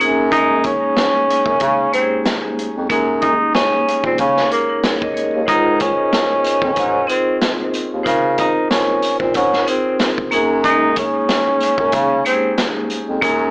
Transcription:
0.00 0.74 F#2 loud
0.00 0.25 A#3 loud
0.00 0.26 C#4 medium
0.00 0.26 D#4 medium
0.00 0.27 G#4 loud
0.00 closed hi-hat medium
0.32 1.30 C#4 medium
0.32 0.61 D#4 loud
0.32 1.31 D#4 medium
0.32 1.31 G#4 medium
0.32 kick loud
0.32 closed hi-hat loud
0.38 1.33 A#3 medium
0.64 1.90 C#4 medium
0.64 kick medium
0.64 closed hi-hat medium
0.97 snare loud
0.97 closed hi-hat medium
1.30 closed hi-hat medium
1.46 1.59 F#2 medium
1.46 kick loud
1.60 1.90 C#3 loud
1.60 kick medium
1.60 closed hi-hat medium
1.93 2.68 G#3 medium
1.93 2.67 A#3 medium
1.93 2.23 C4 medium
1.93 2.68 D#4 medium
1.93 2.02 G4 medium
1.93 closed hi-hat medium
2.02 2.72 G#4 medium
2.25 snare loud
2.25 closed hi-hat medium
2.59 closed hi-hat medium
2.76 2.89 F2 medium
2.89 3.35 F#2 loud
2.89 3.88 A#3 medium
2.89 3.88 C#4 medium
2.89 3.89 D#4 medium
2.89 3.89 G#4 loud
2.89 kick loud
2.89 closed hi-hat medium
3.21 3.51 D#4 medium
3.21 kick medium
3.21 closed hi-hat medium
3.54 4.01 C#4 medium
3.54 snare loud
3.54 closed hi-hat medium
3.88 closed hi-hat medium
4.04 4.17 A#2 medium
4.04 4.18 C4 medium
4.04 kick loud
4.18 4.48 C#3 loud
4.18 4.49 C#4 medium
4.18 kick loud
4.18 closed hi-hat medium
4.37 snare soft
4.50 4.81 A#3 medium
4.50 4.68 G#4 medium
4.50 4.68 C#5 medium
4.50 closed hi-hat medium
4.69 4.83 D#4 medium
4.69 4.83 A#4 medium
4.84 5.01 G#4 medium
4.84 5.01 C#5 medium
4.84 snare loud
4.84 closed hi-hat medium
5.02 5.16 A#4 medium
5.02 5.16 D#5 medium
5.02 kick loud
5.14 5.32 G#4 medium
5.14 5.32 C#5 medium
5.14 closed hi-hat medium
5.34 5.50 D#2 medium
5.34 5.65 A#4 soft
5.34 5.64 D#5 medium
5.46 5.93 C#2 loud
5.46 6.45 D#4 medium
5.46 5.77 D#4 loud
5.46 6.46 F4 medium
5.46 6.46 G#4 medium
5.46 6.45 C5 medium
5.46 kick loud
5.46 closed hi-hat medium
5.46 sleigh bells medium
5.80 7.06 C#4 medium
5.80 kick medium
5.80 closed hi-hat medium
5.80 sleigh bells medium
6.13 snare loud
6.13 closed hi-hat medium
6.13 sleigh bells medium
6.44 closed hi-hat medium
6.44 sleigh bells medium
6.62 6.79 F2 loud
6.62 kick medium
6.76 7.06 G#2 loud
6.76 kick loud
6.76 closed hi-hat medium
6.76 sleigh bells soft
7.07 7.83 C4 medium
7.07 7.39 C4 medium
7.07 7.83 D#4 medium
7.07 7.84 F4 medium
7.07 7.84 G#4 medium
7.07 closed hi-hat medium
7.07 sleigh bells medium
7.41 snare loud
7.41 closed hi-hat medium
7.41 sleigh bells medium
7.74 closed hi-hat medium
7.74 sleigh bells medium
7.92 8.05 D#2 medium
8.03 8.51 C#3 loud
8.03 9.03 D#4 medium
8.03 9.04 F4 medium
8.03 9.04 A#4 loud
8.03 9.03 C5 medium
8.03 kick loud
8.03 closed hi-hat medium
8.03 sleigh bells medium
8.38 8.68 D#4 medium
8.38 kick medium
8.38 closed hi-hat medium
8.38 sleigh bells medium
8.70 9.17 C#4 medium
8.70 snare loud
8.70 closed hi-hat medium
8.70 sleigh bells medium
9.02 closed hi-hat medium
9.02 sleigh bells medium
9.19 9.33 A#2 medium
9.19 9.33 C4 medium
9.19 kick loud
9.34 9.64 G#2 loud
9.34 9.65 C#4 medium
9.34 kick loud
9.34 closed hi-hat medium
9.34 sleigh bells soft
9.53 snare soft
9.67 10.32 C4 medium
9.67 9.97 C4 medium
9.67 10.32 D#4 medium
9.67 10.32 F4 medium
9.67 10.33 G#4 medium
9.67 closed hi-hat medium
9.67 sleigh bells medium
9.99 snare loud
9.99 closed hi-hat medium
9.99 sleigh bells medium
10.18 kick loud
10.31 11.06 F#2 loud
10.31 10.58 A#3 loud
10.31 10.58 C#4 medium
10.31 10.59 D#4 medium
10.31 10.59 G#4 loud
10.31 closed hi-hat medium
10.31 sleigh bells medium
10.64 10.71 G#3 medium
10.64 11.62 C#4 medium
10.64 10.93 D#4 loud
10.64 11.63 D#4 medium
10.64 11.63 G#4 medium
10.64 kick loud
10.64 closed hi-hat loud
10.64 sleigh bells medium
10.70 11.65 A#3 medium
10.96 12.22 C#4 medium
10.96 kick medium
10.96 closed hi-hat medium
10.96 sleigh bells medium
11.29 snare loud
11.29 closed hi-hat medium
11.29 sleigh bells medium
11.60 closed hi-hat medium
11.60 sleigh bells medium
11.78 11.92 F#2 medium
11.78 kick loud
11.92 12.22 C#3 loud
11.92 kick loud
11.92 closed hi-hat medium
11.92 sleigh bells soft
12.25 13.00 G#3 medium
12.25 13.00 A#3 medium
12.25 12.55 C4 medium
12.25 13.01 D#4 medium
12.25 12.34 G4 medium
12.25 closed hi-hat medium
12.25 sleigh bells medium
12.34 13.04 G#4 medium
12.58 snare loud
12.58 closed hi-hat medium
12.58 sleigh bells medium
12.90 closed hi-hat medium
12.90 sleigh bells medium
13.08 13.21 F2 medium
13.22 13.51 F#2 loud
13.22 13.51 A#3 medium
13.22 13.51 C#4 medium
13.22 13.51 D#4 medium
13.22 13.51 G#4 loud
13.22 kick loud
13.22 closed hi-hat loud
13.22 sleigh bells medium

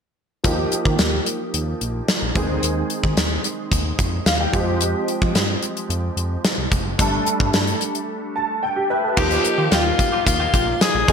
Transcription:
0.44 0.65 D#2 medium
0.44 2.31 F3 medium
0.44 2.32 A#3 medium
0.44 2.32 D#4 medium
0.44 2.32 G4 medium
0.44 kick medium
0.44 closed hi-hat medium
0.72 closed hi-hat medium
0.85 0.96 D#3 medium
0.85 kick medium
0.99 1.20 D#2 medium
0.99 snare loud
0.99 closed hi-hat medium
1.26 closed hi-hat medium
1.54 1.74 D#2 medium
1.54 closed hi-hat medium
1.81 2.02 A#1 medium
1.81 closed hi-hat medium
2.08 snare medium
2.08 closed hi-hat medium
2.22 2.32 A#1 medium
2.35 2.46 D#2 medium
2.35 4.49 D#3 medium
2.35 4.50 G#3 medium
2.35 4.50 C4 medium
2.35 4.51 G#4 medium
2.35 kick medium
2.35 closed hi-hat medium
2.49 2.59 D2 medium
2.63 2.83 D#2 loud
2.63 closed hi-hat medium
2.90 closed hi-hat medium
3.03 3.14 D#3 medium
3.03 kick medium
3.17 3.38 D#2 medium
3.17 snare loud
3.17 closed hi-hat medium
3.44 closed hi-hat medium
3.71 3.92 D#2 medium
3.71 kick medium
3.71 closed hi-hat medium
3.99 4.19 F2 medium
3.99 kick medium
3.99 closed hi-hat medium
4.26 4.47 D#2 medium
4.26 4.39 F5 medium
4.26 snare medium
4.26 closed hi-hat medium
4.40 4.78 G5 medium
4.52 4.95 F2 medium
4.52 6.67 F3 medium
4.52 6.68 G#3 medium
4.52 6.68 C4 medium
4.52 6.69 G4 medium
4.52 kick medium
4.52 closed hi-hat medium
4.81 closed hi-hat medium
5.08 closed hi-hat medium
5.22 5.32 F3 medium
5.22 kick medium
5.35 5.56 G2 loud
5.35 snare medium
5.35 closed hi-hat medium
5.62 closed hi-hat medium
5.77 closed hi-hat soft
5.89 6.10 F2 medium
5.89 closed hi-hat medium
6.17 6.37 F2 medium
6.17 closed hi-hat medium
6.45 snare loud
6.45 closed hi-hat medium
6.58 6.68 C2 medium
6.72 6.82 F1 medium
6.72 kick medium
6.72 closed hi-hat medium
6.85 6.95 F#1 medium
6.98 7.20 G1 loud
6.98 8.86 G3 medium
6.98 8.86 A3 medium
6.98 8.87 D4 medium
6.98 8.34 A4 medium
6.98 kick medium
6.98 closed hi-hat loud
7.26 closed hi-hat medium
7.40 7.50 G2 loud
7.40 kick medium
7.53 7.74 G2 medium
7.53 snare loud
7.53 closed hi-hat medium
7.67 closed hi-hat soft
7.81 closed hi-hat medium
7.95 closed hi-hat soft
8.36 8.61 A5 medium
8.63 8.88 G5 medium
8.76 8.89 G4 medium
8.90 9.03 B4 medium
8.90 9.16 E5 medium
9.03 9.29 A4 medium
9.17 9.38 D#2 loud
9.17 10.08 F3 medium
9.17 9.42 A#3 medium
9.17 10.08 A#3 medium
9.17 10.08 D#4 medium
9.17 9.43 F4 medium
9.17 9.73 G4 medium
9.17 10.09 G4 medium
9.17 9.43 G4 medium
9.17 kick loud
9.17 crash medium
9.31 closed hi-hat medium
9.45 closed hi-hat medium
9.58 9.68 D#3 medium
9.58 9.70 A#3 soft
9.58 9.71 F4 medium
9.58 9.72 G4 medium
9.71 9.92 D#2 medium
9.71 9.91 A#3 medium
9.71 10.26 F4 medium
9.71 9.85 F4 medium
9.71 9.84 G4 medium
9.71 snare loud
9.71 closed hi-hat medium
9.85 muted clean electric guitar stroke soft
9.99 muted clean electric guitar stroke soft
9.99 kick medium
9.99 closed hi-hat medium
10.12 10.25 A#3 soft
10.12 10.25 F4 soft
10.12 10.26 G4 medium
10.26 10.47 D#2 medium
10.26 10.83 F4 medium
10.26 muted clean electric guitar stroke soft
10.26 kick medium
10.26 closed hi-hat medium
10.40 10.52 A#3 soft
10.40 10.53 F4 soft
10.40 10.54 G4 medium
10.53 10.74 A#1 medium
10.53 10.73 A#3 medium
10.53 10.68 F4 medium
10.53 10.66 G4 medium
10.53 kick medium
10.53 closed hi-hat medium
10.68 muted clean electric guitar stroke soft
10.81 11.12 G#4 medium
10.81 snare loud
10.81 closed hi-hat medium
10.95 11.05 A#1 medium
10.95 muted clean electric guitar stroke soft
11.08 11.12 D#2 medium
11.08 11.12 D#3 medium
11.08 11.12 G#3 medium
11.08 11.12 C4 medium
11.08 11.12 D#4 medium
11.08 kick loud
11.08 closed hi-hat medium

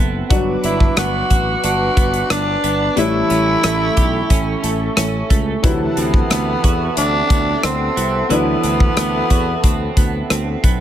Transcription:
0.00 0.21 F#1 medium
0.00 0.27 C3 medium
0.00 0.30 E3 medium
0.00 0.26 F#3 medium
0.00 0.97 B3 medium
0.00 0.37 C4 medium
0.00 0.27 E4 medium
0.00 1.30 F#4 medium
0.00 0.27 A4 medium
0.00 0.26 B4 medium
0.00 0.27 E5 medium
0.00 2.93 F#5 medium
0.00 0.27 A5 medium
0.29 0.55 G1 medium
0.29 2.93 F#3 medium
0.29 2.97 F#3 medium
0.29 2.93 B3 medium
0.29 2.93 D4 medium
0.29 2.94 F#4 medium
0.29 2.95 B4 medium
0.29 2.95 D6 medium
0.29 kick loud
0.29 closed hi-hat medium
0.64 0.88 G1 medium
0.64 1.62 D4 medium
0.64 0.96 E4 medium
0.64 closed hi-hat medium
0.80 kick medium
0.97 1.21 G1 medium
0.97 1.96 B3 medium
0.97 1.60 F#4 medium
0.97 cross-stick loud
0.97 closed hi-hat medium
1.30 1.55 A1 medium
1.30 3.04 F#4 medium
1.30 kick medium
1.30 closed hi-hat medium
1.64 1.88 G1 medium
1.64 2.29 D4 medium
1.64 2.27 F#4 loud
1.64 closed hi-hat medium
1.97 2.21 G1 medium
1.97 2.62 B3 medium
1.97 kick medium
1.97 closed hi-hat medium
2.14 closed hi-hat medium
2.30 2.55 G1 loud
2.30 3.04 D4 medium
2.30 2.94 D4 medium
2.30 cross-stick loud
2.30 closed hi-hat medium
2.64 2.88 G1 medium
2.64 3.04 B3 medium
2.64 closed hi-hat medium
2.96 3.21 A1 loud
2.96 5.63 E3 medium
2.96 5.59 G3 medium
2.96 5.60 A3 medium
2.96 5.60 C#4 medium
2.96 4.94 E4 loud
2.96 5.61 E4 medium
2.96 5.61 A4 medium
2.96 10.80 E5 medium
2.96 5.61 C#6 medium
2.96 closed hi-hat medium
3.30 3.55 A1 medium
3.30 4.29 C#4 medium
3.30 closed hi-hat medium
3.64 3.88 A1 medium
3.64 4.63 A3 medium
3.64 cross-stick loud
3.64 closed hi-hat medium
3.97 4.21 B1 medium
3.97 5.70 G4 medium
3.97 kick medium
3.97 closed hi-hat medium
4.30 4.54 A1 medium
4.30 4.95 C#4 medium
4.30 kick medium
4.30 closed hi-hat medium
4.63 4.88 A1 medium
4.63 5.30 A3 medium
4.63 closed hi-hat medium
4.97 5.21 A1 medium
4.97 5.70 C#4 medium
4.97 cross-stick loud
4.97 closed hi-hat medium
5.30 5.54 C#2 medium
5.30 6.30 A3 medium
5.30 kick medium
5.30 closed hi-hat medium
5.62 5.88 D2 loud
5.62 8.27 C3 medium
5.62 8.30 E3 medium
5.62 8.26 F#3 medium
5.62 8.27 E4 medium
5.62 10.80 A4 medium
5.62 8.26 B4 medium
5.62 10.80 F#5 medium
5.62 10.80 A5 medium
5.62 kick loud
5.62 closed hi-hat medium
5.97 6.21 D2 medium
5.97 6.94 B3 medium
5.97 6.97 C4 medium
5.97 closed hi-hat medium
6.14 kick medium
6.30 6.54 D2 medium
6.30 7.29 B3 medium
6.30 cross-stick loud
6.30 closed hi-hat medium
6.64 6.88 E2 medium
6.64 9.29 F#4 medium
6.64 kick medium
6.64 closed hi-hat medium
6.97 7.21 D2 medium
6.97 7.63 C4 medium
6.97 7.66 D4 loud
6.97 closed hi-hat loud
7.30 7.54 D2 medium
7.30 7.96 B3 medium
7.30 kick medium
7.30 closed hi-hat medium
7.63 7.88 D2 loud
7.63 8.63 C4 medium
7.63 8.32 C4 medium
7.63 cross-stick loud
7.63 closed hi-hat medium
7.97 8.21 C2 medium
7.97 8.96 B3 medium
7.97 closed hi-hat medium
8.29 8.54 D2 loud
8.29 10.80 E3 medium
8.29 10.80 F#3 medium
8.29 10.31 B3 loud
8.29 10.80 D4 medium
8.29 10.80 E4 medium
8.29 10.80 B4 medium
8.29 closed hi-hat medium
8.63 8.88 D2 medium
8.63 9.64 C4 medium
8.63 closed hi-hat medium
8.80 kick medium
8.97 9.21 D2 medium
8.97 9.96 B3 medium
8.97 cross-stick loud
8.97 closed hi-hat medium
9.30 9.55 E2 medium
9.30 10.80 F#4 medium
9.30 kick medium
9.30 closed hi-hat medium
9.64 9.88 D2 medium
9.64 10.30 C4 medium
9.64 kick medium
9.64 closed hi-hat medium
9.97 10.21 D2 medium
9.97 10.63 B3 medium
9.97 kick medium
9.97 closed hi-hat medium
10.30 10.55 D2 medium
10.30 10.80 C4 medium
10.30 cross-stick loud
10.30 closed hi-hat medium
10.64 10.80 B1 medium
10.64 10.80 B3 medium
10.64 kick medium
10.64 closed hi-hat medium

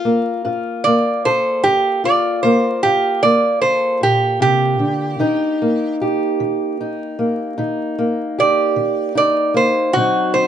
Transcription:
0.00 0.44 F4 soft
0.00 0.40 A4 medium
0.05 0.86 A#3 medium
0.45 1.15 G2 medium
0.45 2.03 F4 medium
0.84 2.44 A#3 medium
0.84 1.22 D5 medium
1.25 3.60 A4 medium
1.25 1.63 C5 medium
1.64 2.35 G2 medium
1.64 2.02 G4 medium
2.04 2.82 F4 medium
2.04 2.42 D5 medium
2.43 3.22 A#3 medium
2.43 2.81 C5 medium
2.83 3.54 G2 medium
2.83 5.16 F4 medium
2.83 3.21 G4 medium
3.23 5.60 A#3 medium
3.23 3.60 D5 medium
3.62 5.15 A4 medium
3.62 4.00 C5 medium
4.01 4.40 A#2 medium
4.01 4.40 G4 medium
4.40 4.79 C3 medium
4.40 5.95 G4 medium
4.79 5.19 D3 medium
5.19 5.91 D#3 medium
5.19 6.80 D#4 medium
5.62 7.18 A#3 medium
6.01 8.38 G4 medium
6.40 7.10 D#3 medium
6.81 7.57 D#4 medium
7.19 7.97 A#3 medium
7.58 8.29 D#3 medium
7.58 9.14 D#4 medium
7.98 9.53 A#3 medium
8.39 9.96 G4 medium
8.39 9.15 D5 medium
8.76 9.47 D#3 medium
9.15 9.90 D#4 medium
9.15 9.55 D5 medium
9.54 9.94 A#3 medium
9.54 9.94 C5 medium
9.93 10.47 D3 medium
9.93 10.47 F#3 medium
9.93 10.33 C4 medium
9.93 10.32 F#4 medium
9.98 10.47 D#4 medium
10.34 10.47 C4 medium
10.34 10.47 C5 medium

